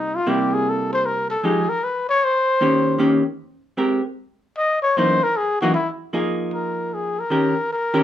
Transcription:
0.00 0.18 C3 soft
0.00 0.18 G3 soft
0.00 0.18 A#3 soft
0.00 0.17 D#4 medium
0.00 0.19 D#4 soft
0.16 0.31 F4 medium
0.27 1.35 C3 soft
0.27 1.35 G3 soft
0.27 1.36 A#3 medium
0.27 1.36 E4 soft
0.27 0.55 G4 medium
0.54 0.71 G#4 medium
0.69 0.92 A4 medium
0.93 1.08 C5 medium
1.06 1.30 A#4 medium
1.30 1.46 A4 medium
1.43 1.66 F3 soft
1.43 1.66 G#3 soft
1.43 1.67 D#4 medium
1.43 1.67 G4 soft
1.43 1.71 G#4 medium
1.70 1.86 A#4 medium
1.84 2.09 B4 medium
2.10 2.26 C#5 medium
2.25 3.01 C5 medium
2.61 2.97 D#3 medium
2.61 2.98 A#3 medium
2.61 2.99 C#4 soft
2.61 2.98 G4 medium
2.98 3.22 D#3 medium
2.98 3.22 A#3 medium
2.98 3.23 C#4 medium
2.98 3.23 G4 medium
3.77 4.00 G#3 soft
3.77 4.01 C4 soft
3.77 4.01 G4 medium
3.77 4.01 A#4 soft
4.58 4.81 D#5 medium
4.83 4.99 C#5 medium
4.97 5.19 F#2 medium
4.97 5.19 E3 medium
4.97 5.20 A#3 medium
4.97 5.20 D#4 medium
4.97 5.25 C5 medium
5.24 5.39 A#4 medium
5.37 5.61 G#4 medium
5.62 5.73 F#2 medium
5.62 5.74 E3 medium
5.62 5.74 A#3 medium
5.62 5.74 D#4 medium
5.62 5.74 F#4 medium
5.75 5.90 E4 medium
6.13 7.22 F3 soft
6.13 7.22 A#3 soft
6.13 7.23 D#4 medium
6.13 7.23 G#4 soft
6.53 6.96 A#4 medium
6.94 7.21 G#4 medium
7.20 7.71 A#4 medium
7.30 7.53 D#3 soft
7.30 7.54 C#4 soft
7.30 7.54 G4 soft
7.30 7.54 A#4 soft
7.73 8.03 A#4 medium
7.94 8.03 D#3 medium
7.94 8.03 C#4 medium
7.94 8.03 G4 medium
7.94 8.03 A#4 medium

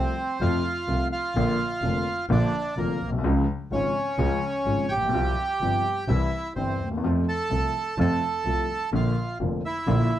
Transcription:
0.00 0.13 C2 medium
0.00 0.13 C3 medium
0.00 0.13 F3 soft
0.00 0.13 A3 soft
0.00 0.38 C4 medium
0.00 0.13 F4 soft
0.00 0.43 C5 loud
0.41 0.60 F2 medium
0.41 0.61 F2 medium
0.41 0.60 C3 medium
0.41 0.61 F3 medium
0.41 0.61 A3 medium
0.41 0.61 F4 medium
0.41 1.08 F4 medium
0.41 1.08 F5 loud
0.88 1.07 C2 medium
0.88 1.08 C2 medium
0.88 1.08 C3 medium
0.88 1.08 F3 soft
0.88 1.08 A3 soft
0.88 1.08 F4 medium
1.12 2.26 F4 medium
1.12 2.26 F5 loud
1.35 1.55 A#1 medium
1.35 1.55 A#2 medium
1.35 1.55 D3 medium
1.35 1.55 F3 medium
1.35 1.55 A#3 medium
1.35 1.56 F4 medium
1.82 2.02 F1 medium
1.82 2.02 F2 medium
1.82 2.02 D3 medium
1.82 2.02 F3 soft
1.82 2.02 A#3 soft
1.82 2.02 F4 medium
2.29 2.49 A#1 loud
2.29 2.49 A#1 medium
2.29 2.49 A#2 medium
2.29 2.49 D3 medium
2.29 2.49 F3 medium
2.29 2.49 A#3 medium
2.29 2.75 D4 medium
2.29 2.49 F4 medium
2.29 2.79 D5 loud
2.77 2.96 F1 medium
2.77 2.96 F2 medium
2.77 2.96 D3 soft
2.77 2.97 F3 soft
2.77 2.96 A#3 soft
2.77 3.10 A#3 medium
2.77 2.97 F4 medium
2.77 3.10 A#4 medium
3.01 3.23 B1 medium
3.08 3.13 A#1 medium
3.12 3.18 B1 medium
3.18 3.24 C2 medium
3.23 3.43 C#2 loud
3.23 3.44 C#2 medium
3.23 3.44 C#3 medium
3.23 3.44 F3 medium
3.23 3.44 G#3 medium
3.23 3.44 F4 medium
3.71 3.91 G#1 medium
3.71 3.91 G#2 medium
3.71 3.91 C#3 medium
3.71 3.91 F3 soft
3.71 3.91 G#3 soft
3.71 4.86 C#4 medium
3.71 3.91 F4 medium
3.71 4.93 C#5 medium
4.18 4.38 C#2 loud
4.18 4.38 C#2 medium
4.18 4.38 C#3 medium
4.18 4.38 F3 medium
4.18 4.38 G#3 medium
4.18 4.38 F4 medium
4.66 4.85 G#1 medium
4.66 4.86 G#1 medium
4.66 4.85 G#2 medium
4.66 4.85 C#3 soft
4.66 4.85 F3 soft
4.66 4.86 G#3 soft
4.66 4.86 F4 soft
4.89 5.12 A#1 medium
4.89 6.05 G4 medium
4.89 6.11 G5 loud
4.97 5.02 A1 soft
5.02 5.07 A#1 medium
5.09 5.14 B1 medium
5.09 5.33 C2 medium
5.13 5.33 C2 medium
5.13 5.33 C3 medium
5.13 5.33 F3 medium
5.13 5.33 G3 medium
5.13 5.33 F4 medium
5.61 5.80 G1 medium
5.61 5.81 G1 medium
5.61 5.81 G2 medium
5.61 5.81 C3 soft
5.61 5.81 F3 soft
5.61 5.81 G3 soft
5.61 5.81 F4 medium
6.08 6.28 C2 medium
6.08 6.28 C3 medium
6.08 6.28 E3 medium
6.08 6.28 G3 medium
6.08 6.28 E4 medium
6.08 6.53 E4 medium
6.08 6.52 E5 medium
6.55 6.75 G1 medium
6.55 6.75 G1 soft
6.55 6.76 G2 soft
6.55 6.76 C3 soft
6.55 6.76 E3 soft
6.55 6.76 G3 soft
6.55 6.89 C4 medium
6.55 6.76 E4 soft
6.55 6.89 C5 medium
6.79 7.02 D#2 medium
6.85 6.91 D2 soft
6.91 6.97 D#2 medium
6.97 7.03 E2 medium
7.03 7.23 F2 medium
7.03 7.24 F2 medium
7.03 7.23 C3 medium
7.03 7.23 F3 medium
7.03 7.23 A3 medium
7.03 7.24 F4 medium
7.28 7.95 A4 medium
7.28 7.99 A5 loud
7.50 7.70 C2 medium
7.50 7.71 C3 medium
7.50 7.71 F3 soft
7.50 7.71 A3 soft
7.50 7.71 F4 medium
7.98 8.18 F2 loud
7.98 8.19 F2 medium
7.98 8.18 C3 medium
7.98 8.19 F3 medium
7.98 8.19 A3 medium
7.98 8.18 F4 medium
7.98 8.90 A4 medium
7.98 8.90 A5 loud
8.45 8.65 C2 medium
8.45 8.65 C2 soft
8.45 8.66 C3 medium
8.45 8.65 F3 soft
8.45 8.66 A3 soft
8.45 8.66 F4 soft
8.92 9.12 A#1 medium
8.92 9.13 A#1 medium
8.92 9.13 A#2 medium
8.92 9.12 D3 medium
8.92 9.13 F3 medium
8.92 9.13 A#3 medium
8.92 9.13 F4 medium
8.92 9.38 F4 medium
8.92 9.38 F5 medium
9.40 9.60 F1 medium
9.40 9.60 F2 medium
9.40 9.60 D3 soft
9.40 9.60 F3 soft
9.40 9.60 A#3 soft
9.40 9.60 F4 medium
9.65 10.19 E4 medium
9.65 10.19 E5 loud
9.87 10.07 A#1 loud
9.87 10.07 A#1 medium
9.87 10.07 A#2 medium
9.87 10.07 D3 medium
9.87 10.07 F3 medium
9.87 10.07 A#3 medium
9.87 10.08 F4 medium

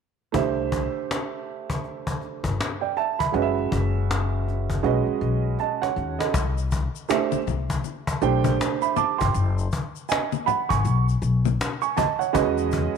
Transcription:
0.32 0.85 C2 medium
0.32 3.29 A3 medium
0.32 3.30 D4 medium
0.32 3.30 G4 medium
0.32 3.31 C5 medium
0.32 2.56 E5 medium
0.32 cajon bass medium
0.72 cajon bass medium
1.11 cajon slap medium
1.70 cajon bass medium
1.84 cajon slap soft
2.07 cajon bass medium
2.21 cajon slap soft
2.44 2.56 G1 medium
2.44 cajon bass medium
2.61 cajon slap medium
2.81 2.96 D5 soft
2.81 2.96 G5 medium
2.97 3.18 E5 medium
2.97 3.19 A5 medium
2.97 cajon slap soft
3.19 3.41 E5 soft
3.19 3.55 B5 medium
3.19 cajon bass medium
3.32 3.66 F#1 medium
3.32 4.80 G#3 medium
3.32 4.81 C#4 medium
3.32 4.81 F#4 medium
3.32 4.82 B4 medium
3.32 3.43 D#5 medium
3.32 cajon slap soft
3.42 4.85 E5 medium
3.72 4.81 F#1 medium
3.72 cajon bass medium
4.11 cajon slap medium
4.48 cajon slap soft
4.70 cajon bass medium
4.83 5.04 B1 medium
4.83 6.31 G#3 medium
4.83 6.31 C#4 medium
4.83 6.31 F#4 medium
4.83 5.58 B4 medium
4.83 5.59 D#5 medium
4.83 cajon slap soft
5.07 muted upright bass stroke soft
5.21 5.53 B1 medium
5.21 cajon slap soft
5.59 5.82 D#5 soft
5.59 5.81 A5 medium
5.59 cajon slap soft
5.82 6.18 C#5 soft
5.82 6.18 F#5 medium
5.82 cajon slap soft
5.96 6.16 D#2 medium
5.96 cajon slap soft
6.19 6.55 A4 soft
6.19 6.55 D#5 medium
6.19 cajon slap medium
6.34 6.85 C2 medium
6.34 cajon bass loud
6.34 shaker medium
6.58 shaker soft
6.71 cajon bass medium
6.71 shaker soft
6.96 shaker soft
7.09 7.38 A3 medium
7.09 7.38 D4 medium
7.09 7.38 G4 medium
7.09 7.38 C5 medium
7.09 7.39 E5 medium
7.09 cajon slap loud
7.09 shaker medium
7.32 muted upright bass stroke soft
7.32 high conga medium
7.32 shaker soft
7.47 7.79 C2 medium
7.47 low conga medium
7.47 shaker soft
7.70 cajon bass medium
7.70 shaker soft
7.84 cajon slap soft
7.84 high conga soft
7.84 shaker medium
8.07 cajon bass medium
8.07 shaker soft
8.21 8.54 B1 medium
8.21 9.28 A3 medium
8.21 9.28 D4 medium
8.21 9.29 G4 medium
8.21 9.29 C5 medium
8.21 8.60 G5 medium
8.21 cajon slap soft
8.21 shaker soft
8.44 cajon bass medium
8.44 high conga medium
8.44 shaker soft
8.61 cajon slap medium
8.61 shaker medium
8.82 8.96 E5 soft
8.82 8.96 B5 medium
8.82 shaker soft
8.96 9.19 A5 medium
8.96 9.18 D6 medium
8.96 cajon slap soft
8.96 high conga soft
8.96 low conga medium
8.96 shaker soft
9.18 9.33 G1 medium
9.18 9.55 G5 soft
9.18 9.55 C6 medium
9.18 cajon bass medium
9.18 shaker soft
9.34 9.66 F#1 medium
9.34 cajon slap medium
9.34 shaker medium
9.58 shaker soft
9.72 cajon bass medium
9.72 shaker soft
9.96 shaker soft
10.09 10.45 D#5 medium
10.09 10.45 G#5 medium
10.09 cajon slap loud
10.09 shaker medium
10.32 high conga medium
10.32 shaker soft
10.46 10.69 F#5 medium
10.46 10.68 B5 medium
10.46 cajon slap soft
10.46 low conga medium
10.46 shaker soft
10.69 10.82 G#1 medium
10.69 11.05 G#5 medium
10.69 11.05 C#6 medium
10.69 cajon bass medium
10.69 shaker soft
10.85 11.16 B1 medium
10.85 cajon slap soft
10.85 high conga soft
10.85 shaker medium
11.09 shaker soft
11.22 11.54 B1 medium
11.22 cajon slap soft
11.22 shaker soft
11.45 high conga medium
11.45 shaker soft
11.61 cajon slap loud
11.61 shaker medium
11.82 11.96 G#5 soft
11.82 11.96 C#6 medium
11.82 shaker soft
11.97 12.19 D#5 medium
11.97 12.19 A5 medium
11.97 cajon bass medium
11.97 high conga soft
11.97 low conga medium
11.97 shaker soft
12.19 12.55 C#5 soft
12.19 12.55 F#5 medium
12.19 shaker soft
12.33 12.86 E2 medium
12.33 12.97 G#3 medium
12.33 12.97 C#4 medium
12.33 12.97 F#4 medium
12.33 12.97 B4 medium
12.33 12.97 D#5 medium
12.33 cajon bass loud
12.33 shaker medium
12.58 shaker soft
12.71 cajon bass medium
12.71 shaker soft

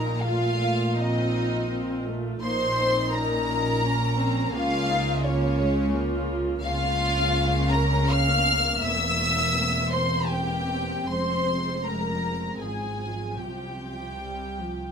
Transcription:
0.00 2.39 A#1 medium
0.00 2.39 A#2 medium
0.00 0.24 A#3 medium
0.00 0.24 D#4 medium
0.00 0.24 A#4 medium
0.00 0.23 A#5 medium
0.22 0.98 A3 medium
0.22 0.98 F4 medium
0.22 0.60 F4 medium
0.22 0.97 F5 loud
0.61 2.39 F4 medium
0.98 1.70 C4 medium
0.98 2.07 D#4 medium
0.98 2.07 D#5 medium
1.72 2.07 C4 medium
2.06 2.43 A3 medium
2.43 4.51 A#1 medium
2.43 4.51 A#2 medium
2.43 2.79 A#3 medium
2.43 3.82 D#4 medium
2.43 3.10 C5 medium
2.43 3.10 C6 loud
2.80 3.15 C4 medium
3.12 3.83 C#4 medium
3.12 4.54 A#4 medium
3.12 4.54 A#5 loud
3.84 4.53 C#4 medium
4.18 4.54 C4 medium
4.54 6.60 C#2 medium
4.54 6.61 C#3 medium
4.54 5.24 A#3 medium
4.54 4.89 C#4 medium
4.54 5.25 F4 medium
4.54 5.23 F5 loud
4.90 5.25 D#4 medium
5.25 5.59 A#3 medium
5.25 6.30 C#4 medium
5.25 5.91 F4 medium
5.25 6.29 C#5 loud
5.60 5.94 G#3 medium
5.92 6.63 A#3 medium
5.92 6.62 F4 medium
6.62 8.78 C#2 medium
6.62 8.78 C#3 medium
6.62 11.05 A#3 medium
6.62 8.79 C#4 medium
6.62 7.68 F4 loud
6.62 7.67 F5 loud
7.71 8.10 A#4 medium
7.71 8.10 A#5 loud
8.09 8.82 F5 loud
8.09 8.82 F6 loud
8.79 11.04 E1 medium
8.79 11.05 E2 medium
8.79 13.34 C4 medium
8.79 9.89 E5 medium
8.79 9.92 E6 loud
9.92 10.29 C5 medium
9.92 10.28 C6 loud
10.29 11.09 G4 medium
10.29 11.09 G5 medium
11.08 12.55 F1 medium
11.08 12.55 F2 medium
11.08 12.54 G#3 medium
11.08 11.83 C5 medium
11.08 11.83 C6 medium
11.84 12.59 A#4 medium
11.84 12.59 A#5 medium
12.58 13.37 G#1 soft
12.58 13.36 G#2 medium
12.58 14.08 F3 medium
12.58 13.39 G#4 medium
12.58 13.37 G#5 medium
13.38 14.92 C2 soft
13.38 14.92 C3 medium
13.38 14.08 C4 soft
13.38 14.92 G4 medium
13.38 14.92 G5 medium
14.20 14.57 G3 medium
14.59 14.92 F3 medium

